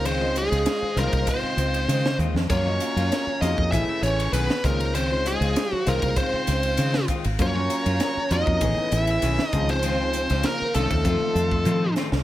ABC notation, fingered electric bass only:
X:1
M:4/4
L:1/16
Q:1/4=98
K:Db
V:1 name="Fingered electric bass" clef=bass
D,,3 D,, z2 C,, C,, z2 D,,2 D,2 E,, F,, | G,,2 z G,, z2 F,, F,, =A,,, z A,,,2 =B,,, z D,,2- | D,,3 D,, z2 C,, C,, z2 D,,2 D,2 z A,,, | G,,2 z G,, z2 F,, F,, =A,,, z A,,,2 =B,,, z D,,2- |
D,,3 D,, z2 C,, E,, F,, z F,,2 F,2 z C,, |]